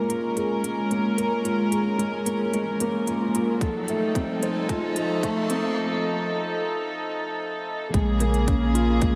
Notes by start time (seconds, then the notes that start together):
Already playing: G#3 A#3 C#4 F4 A#4, riser
0.09 F4, closed hi-hat
0.36 G#4, closed hi-hat
0.64 G#3, closed hi-hat
0.91 A#3, closed hi-hat
1.18 A#4, closed hi-hat
1.44 F4, closed hi-hat
1.72 G#4, closed hi-hat
1.98 G#3, closed hi-hat
2.26 A#3, closed hi-hat
2.53 G#3, closed hi-hat
2.80 A#3, closed hi-hat
3.07 F4, closed hi-hat
3.35 F4, closed hi-hat
3.61 F3 D#4 A4, kick, closed hi-hat
3.88 A3, closed hi-hat
4.15 C4, kick, closed hi-hat
4.43 C5, closed hi-hat
4.69 F4, kick, closed hi-hat
4.96 A4, closed hi-hat
5.23 A3, kick, closed hi-hat
5.50 C4, closed hi-hat
7.94 A#1 C#3 G#3 A#3 G#4, kick, closed hi-hat
8.20 A#3, closed hi-hat
8.34 closed hi-hat
8.48 C#4, kick, closed hi-hat
8.74 F4, closed hi-hat
9.01 G#3, kick, closed hi-hat